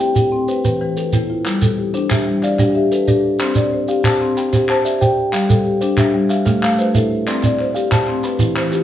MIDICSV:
0, 0, Header, 1, 5, 480
1, 0, Start_track
1, 0, Tempo, 322928
1, 2169, Time_signature, 12, 3, 24, 8
1, 13132, End_track
2, 0, Start_track
2, 0, Title_t, "Kalimba"
2, 0, Program_c, 0, 108
2, 0, Note_on_c, 0, 79, 62
2, 237, Note_on_c, 0, 67, 74
2, 721, Note_off_c, 0, 79, 0
2, 722, Note_off_c, 0, 67, 0
2, 723, Note_on_c, 0, 72, 64
2, 962, Note_on_c, 0, 71, 64
2, 963, Note_on_c, 0, 52, 78
2, 1205, Note_off_c, 0, 72, 0
2, 1441, Note_on_c, 0, 69, 62
2, 1446, Note_off_c, 0, 52, 0
2, 1682, Note_on_c, 0, 59, 78
2, 1685, Note_off_c, 0, 71, 0
2, 1685, Note_on_c, 0, 64, 63
2, 2166, Note_off_c, 0, 59, 0
2, 2166, Note_off_c, 0, 69, 0
2, 2407, Note_on_c, 0, 55, 83
2, 2408, Note_off_c, 0, 64, 0
2, 2887, Note_on_c, 0, 72, 65
2, 2889, Note_off_c, 0, 55, 0
2, 3125, Note_on_c, 0, 62, 74
2, 3129, Note_on_c, 0, 67, 66
2, 3608, Note_off_c, 0, 62, 0
2, 3609, Note_off_c, 0, 72, 0
2, 3617, Note_on_c, 0, 77, 68
2, 3839, Note_off_c, 0, 67, 0
2, 3856, Note_on_c, 0, 62, 85
2, 3856, Note_on_c, 0, 67, 71
2, 4334, Note_off_c, 0, 62, 0
2, 4334, Note_off_c, 0, 77, 0
2, 4336, Note_on_c, 0, 69, 68
2, 4574, Note_off_c, 0, 67, 0
2, 4574, Note_on_c, 0, 74, 64
2, 4577, Note_on_c, 0, 62, 72
2, 5054, Note_off_c, 0, 62, 0
2, 5054, Note_off_c, 0, 69, 0
2, 5055, Note_on_c, 0, 72, 68
2, 5293, Note_off_c, 0, 74, 0
2, 5295, Note_on_c, 0, 60, 80
2, 5533, Note_off_c, 0, 72, 0
2, 5773, Note_off_c, 0, 60, 0
2, 5774, Note_on_c, 0, 77, 63
2, 6014, Note_on_c, 0, 67, 76
2, 6016, Note_on_c, 0, 72, 71
2, 6493, Note_off_c, 0, 67, 0
2, 6493, Note_off_c, 0, 77, 0
2, 6495, Note_on_c, 0, 83, 67
2, 6709, Note_off_c, 0, 72, 0
2, 6727, Note_on_c, 0, 72, 69
2, 6730, Note_on_c, 0, 67, 87
2, 7206, Note_on_c, 0, 74, 65
2, 7211, Note_off_c, 0, 67, 0
2, 7213, Note_off_c, 0, 83, 0
2, 7449, Note_off_c, 0, 72, 0
2, 7450, Note_on_c, 0, 67, 77
2, 7450, Note_on_c, 0, 79, 65
2, 7917, Note_on_c, 0, 77, 71
2, 7929, Note_off_c, 0, 74, 0
2, 7930, Note_off_c, 0, 67, 0
2, 8162, Note_on_c, 0, 55, 85
2, 8171, Note_off_c, 0, 79, 0
2, 8404, Note_off_c, 0, 77, 0
2, 8636, Note_on_c, 0, 72, 69
2, 8646, Note_off_c, 0, 55, 0
2, 8878, Note_on_c, 0, 62, 77
2, 8878, Note_on_c, 0, 67, 68
2, 9362, Note_off_c, 0, 72, 0
2, 9363, Note_off_c, 0, 62, 0
2, 9366, Note_on_c, 0, 77, 70
2, 9598, Note_on_c, 0, 69, 73
2, 9600, Note_on_c, 0, 57, 79
2, 9603, Note_off_c, 0, 67, 0
2, 9847, Note_off_c, 0, 77, 0
2, 10084, Note_off_c, 0, 57, 0
2, 10084, Note_on_c, 0, 71, 60
2, 10323, Note_off_c, 0, 69, 0
2, 10323, Note_on_c, 0, 76, 65
2, 10324, Note_on_c, 0, 64, 72
2, 10805, Note_off_c, 0, 71, 0
2, 10805, Note_on_c, 0, 74, 65
2, 10806, Note_off_c, 0, 64, 0
2, 11036, Note_on_c, 0, 60, 86
2, 11045, Note_off_c, 0, 76, 0
2, 11285, Note_off_c, 0, 74, 0
2, 11513, Note_on_c, 0, 77, 65
2, 11521, Note_off_c, 0, 60, 0
2, 11757, Note_on_c, 0, 72, 63
2, 11758, Note_on_c, 0, 67, 76
2, 12238, Note_off_c, 0, 77, 0
2, 12241, Note_off_c, 0, 67, 0
2, 12244, Note_on_c, 0, 83, 69
2, 12480, Note_off_c, 0, 72, 0
2, 12480, Note_on_c, 0, 52, 85
2, 12482, Note_on_c, 0, 64, 71
2, 12724, Note_off_c, 0, 83, 0
2, 12958, Note_on_c, 0, 65, 59
2, 12961, Note_off_c, 0, 52, 0
2, 13132, Note_off_c, 0, 64, 0
2, 13132, Note_off_c, 0, 65, 0
2, 13132, End_track
3, 0, Start_track
3, 0, Title_t, "Marimba"
3, 0, Program_c, 1, 12
3, 0, Note_on_c, 1, 67, 77
3, 0, Note_on_c, 1, 72, 58
3, 0, Note_on_c, 1, 76, 67
3, 233, Note_on_c, 1, 79, 65
3, 240, Note_off_c, 1, 76, 0
3, 475, Note_on_c, 1, 60, 74
3, 480, Note_off_c, 1, 67, 0
3, 485, Note_off_c, 1, 72, 0
3, 716, Note_on_c, 1, 71, 61
3, 721, Note_off_c, 1, 60, 0
3, 960, Note_off_c, 1, 79, 0
3, 1187, Note_off_c, 1, 71, 0
3, 1205, Note_on_c, 1, 71, 62
3, 1206, Note_on_c, 1, 52, 73
3, 1448, Note_on_c, 1, 67, 62
3, 1687, Note_off_c, 1, 52, 0
3, 1688, Note_on_c, 1, 64, 65
3, 1927, Note_off_c, 1, 71, 0
3, 1929, Note_on_c, 1, 65, 59
3, 2168, Note_on_c, 1, 55, 80
3, 2169, Note_off_c, 1, 64, 0
3, 2169, Note_off_c, 1, 67, 0
3, 2406, Note_on_c, 1, 69, 66
3, 2409, Note_off_c, 1, 65, 0
3, 2645, Note_on_c, 1, 67, 62
3, 2649, Note_off_c, 1, 55, 0
3, 2884, Note_on_c, 1, 62, 77
3, 3128, Note_off_c, 1, 69, 0
3, 3130, Note_on_c, 1, 76, 73
3, 3367, Note_off_c, 1, 62, 0
3, 3368, Note_off_c, 1, 67, 0
3, 3368, Note_on_c, 1, 55, 73
3, 3613, Note_on_c, 1, 74, 69
3, 3850, Note_off_c, 1, 55, 0
3, 3851, Note_off_c, 1, 76, 0
3, 4088, Note_on_c, 1, 76, 63
3, 4090, Note_on_c, 1, 67, 82
3, 4331, Note_on_c, 1, 71, 70
3, 4333, Note_off_c, 1, 74, 0
3, 4554, Note_off_c, 1, 67, 0
3, 4572, Note_on_c, 1, 67, 75
3, 4810, Note_off_c, 1, 76, 0
3, 5052, Note_off_c, 1, 67, 0
3, 5052, Note_off_c, 1, 71, 0
3, 5053, Note_on_c, 1, 60, 80
3, 5290, Note_on_c, 1, 74, 67
3, 5533, Note_off_c, 1, 60, 0
3, 5540, Note_on_c, 1, 72, 61
3, 5783, Note_on_c, 1, 67, 78
3, 6011, Note_off_c, 1, 74, 0
3, 6022, Note_on_c, 1, 81, 69
3, 6256, Note_off_c, 1, 72, 0
3, 6258, Note_off_c, 1, 67, 0
3, 6260, Note_on_c, 1, 60, 76
3, 6499, Note_on_c, 1, 79, 65
3, 6736, Note_off_c, 1, 60, 0
3, 6737, Note_off_c, 1, 81, 0
3, 6979, Note_on_c, 1, 81, 72
3, 6980, Note_on_c, 1, 72, 85
3, 7207, Note_on_c, 1, 76, 71
3, 7215, Note_off_c, 1, 79, 0
3, 7418, Note_off_c, 1, 72, 0
3, 7436, Note_on_c, 1, 72, 69
3, 7695, Note_off_c, 1, 81, 0
3, 7913, Note_on_c, 1, 55, 86
3, 7923, Note_off_c, 1, 72, 0
3, 7929, Note_off_c, 1, 76, 0
3, 8158, Note_on_c, 1, 69, 72
3, 8399, Note_on_c, 1, 67, 61
3, 8402, Note_off_c, 1, 55, 0
3, 8645, Note_on_c, 1, 62, 75
3, 8884, Note_off_c, 1, 69, 0
3, 8884, Note_on_c, 1, 76, 72
3, 9124, Note_off_c, 1, 67, 0
3, 9125, Note_on_c, 1, 55, 80
3, 9128, Note_off_c, 1, 62, 0
3, 9353, Note_off_c, 1, 76, 0
3, 9367, Note_off_c, 1, 55, 0
3, 9371, Note_on_c, 1, 76, 66
3, 9844, Note_on_c, 1, 57, 75
3, 9848, Note_on_c, 1, 77, 69
3, 10086, Note_on_c, 1, 72, 74
3, 10089, Note_off_c, 1, 76, 0
3, 10326, Note_off_c, 1, 57, 0
3, 10334, Note_on_c, 1, 69, 76
3, 10567, Note_off_c, 1, 77, 0
3, 10807, Note_off_c, 1, 72, 0
3, 10808, Note_on_c, 1, 60, 84
3, 10810, Note_off_c, 1, 69, 0
3, 11064, Note_on_c, 1, 74, 67
3, 11287, Note_off_c, 1, 60, 0
3, 11301, Note_on_c, 1, 72, 63
3, 11530, Note_on_c, 1, 67, 78
3, 11772, Note_on_c, 1, 81, 70
3, 11774, Note_off_c, 1, 74, 0
3, 12007, Note_off_c, 1, 67, 0
3, 12009, Note_on_c, 1, 60, 83
3, 12012, Note_off_c, 1, 72, 0
3, 12245, Note_on_c, 1, 71, 62
3, 12247, Note_off_c, 1, 60, 0
3, 12487, Note_off_c, 1, 81, 0
3, 12727, Note_on_c, 1, 52, 80
3, 12729, Note_on_c, 1, 72, 68
3, 12963, Note_off_c, 1, 71, 0
3, 12974, Note_on_c, 1, 67, 73
3, 13132, Note_off_c, 1, 52, 0
3, 13132, Note_off_c, 1, 67, 0
3, 13132, Note_off_c, 1, 72, 0
3, 13132, End_track
4, 0, Start_track
4, 0, Title_t, "Shekere"
4, 0, Note_on_c, 9, 82, 47
4, 142, Note_off_c, 9, 82, 0
4, 234, Note_on_c, 9, 82, 69
4, 383, Note_off_c, 9, 82, 0
4, 715, Note_on_c, 9, 82, 54
4, 864, Note_off_c, 9, 82, 0
4, 962, Note_on_c, 9, 82, 65
4, 1110, Note_off_c, 9, 82, 0
4, 1442, Note_on_c, 9, 82, 59
4, 1591, Note_off_c, 9, 82, 0
4, 1676, Note_on_c, 9, 82, 67
4, 1824, Note_off_c, 9, 82, 0
4, 2172, Note_on_c, 9, 82, 68
4, 2321, Note_off_c, 9, 82, 0
4, 2409, Note_on_c, 9, 82, 82
4, 2557, Note_off_c, 9, 82, 0
4, 2884, Note_on_c, 9, 82, 61
4, 3033, Note_off_c, 9, 82, 0
4, 3138, Note_on_c, 9, 82, 75
4, 3287, Note_off_c, 9, 82, 0
4, 3620, Note_on_c, 9, 82, 60
4, 3768, Note_off_c, 9, 82, 0
4, 3849, Note_on_c, 9, 82, 73
4, 3997, Note_off_c, 9, 82, 0
4, 4339, Note_on_c, 9, 82, 58
4, 4488, Note_off_c, 9, 82, 0
4, 4575, Note_on_c, 9, 82, 77
4, 4724, Note_off_c, 9, 82, 0
4, 5041, Note_on_c, 9, 82, 56
4, 5189, Note_off_c, 9, 82, 0
4, 5282, Note_on_c, 9, 82, 70
4, 5431, Note_off_c, 9, 82, 0
4, 5766, Note_on_c, 9, 82, 56
4, 5915, Note_off_c, 9, 82, 0
4, 6006, Note_on_c, 9, 82, 75
4, 6155, Note_off_c, 9, 82, 0
4, 6499, Note_on_c, 9, 82, 65
4, 6647, Note_off_c, 9, 82, 0
4, 6735, Note_on_c, 9, 82, 71
4, 6884, Note_off_c, 9, 82, 0
4, 7216, Note_on_c, 9, 82, 64
4, 7364, Note_off_c, 9, 82, 0
4, 7459, Note_on_c, 9, 82, 82
4, 7608, Note_off_c, 9, 82, 0
4, 7931, Note_on_c, 9, 82, 75
4, 8080, Note_off_c, 9, 82, 0
4, 8174, Note_on_c, 9, 82, 88
4, 8323, Note_off_c, 9, 82, 0
4, 8646, Note_on_c, 9, 82, 65
4, 8795, Note_off_c, 9, 82, 0
4, 8878, Note_on_c, 9, 82, 78
4, 9026, Note_off_c, 9, 82, 0
4, 9362, Note_on_c, 9, 82, 71
4, 9511, Note_off_c, 9, 82, 0
4, 9606, Note_on_c, 9, 82, 86
4, 9754, Note_off_c, 9, 82, 0
4, 10087, Note_on_c, 9, 82, 65
4, 10236, Note_off_c, 9, 82, 0
4, 10327, Note_on_c, 9, 82, 84
4, 10476, Note_off_c, 9, 82, 0
4, 10813, Note_on_c, 9, 82, 65
4, 10962, Note_off_c, 9, 82, 0
4, 11052, Note_on_c, 9, 82, 80
4, 11200, Note_off_c, 9, 82, 0
4, 11533, Note_on_c, 9, 82, 64
4, 11681, Note_off_c, 9, 82, 0
4, 11770, Note_on_c, 9, 82, 83
4, 11919, Note_off_c, 9, 82, 0
4, 12242, Note_on_c, 9, 82, 60
4, 12390, Note_off_c, 9, 82, 0
4, 12472, Note_on_c, 9, 82, 74
4, 12621, Note_off_c, 9, 82, 0
4, 12961, Note_on_c, 9, 82, 59
4, 13110, Note_off_c, 9, 82, 0
4, 13132, End_track
5, 0, Start_track
5, 0, Title_t, "Drums"
5, 2164, Note_on_c, 9, 39, 48
5, 2313, Note_off_c, 9, 39, 0
5, 3126, Note_on_c, 9, 39, 59
5, 3275, Note_off_c, 9, 39, 0
5, 3611, Note_on_c, 9, 39, 19
5, 3760, Note_off_c, 9, 39, 0
5, 3854, Note_on_c, 9, 39, 19
5, 4003, Note_off_c, 9, 39, 0
5, 5058, Note_on_c, 9, 39, 62
5, 5207, Note_off_c, 9, 39, 0
5, 6018, Note_on_c, 9, 39, 68
5, 6167, Note_off_c, 9, 39, 0
5, 6511, Note_on_c, 9, 39, 21
5, 6659, Note_off_c, 9, 39, 0
5, 6744, Note_on_c, 9, 39, 21
5, 6893, Note_off_c, 9, 39, 0
5, 6969, Note_on_c, 9, 39, 60
5, 7118, Note_off_c, 9, 39, 0
5, 7923, Note_on_c, 9, 39, 56
5, 8071, Note_off_c, 9, 39, 0
5, 8884, Note_on_c, 9, 39, 56
5, 9032, Note_off_c, 9, 39, 0
5, 9366, Note_on_c, 9, 39, 19
5, 9515, Note_off_c, 9, 39, 0
5, 9606, Note_on_c, 9, 39, 19
5, 9755, Note_off_c, 9, 39, 0
5, 9858, Note_on_c, 9, 39, 65
5, 10006, Note_off_c, 9, 39, 0
5, 10814, Note_on_c, 9, 39, 55
5, 10963, Note_off_c, 9, 39, 0
5, 11047, Note_on_c, 9, 39, 20
5, 11196, Note_off_c, 9, 39, 0
5, 11288, Note_on_c, 9, 39, 20
5, 11437, Note_off_c, 9, 39, 0
5, 11767, Note_on_c, 9, 39, 62
5, 11916, Note_off_c, 9, 39, 0
5, 12003, Note_on_c, 9, 39, 21
5, 12151, Note_off_c, 9, 39, 0
5, 12250, Note_on_c, 9, 39, 20
5, 12398, Note_off_c, 9, 39, 0
5, 12727, Note_on_c, 9, 39, 59
5, 12875, Note_off_c, 9, 39, 0
5, 12956, Note_on_c, 9, 39, 22
5, 13105, Note_off_c, 9, 39, 0
5, 13132, End_track
0, 0, End_of_file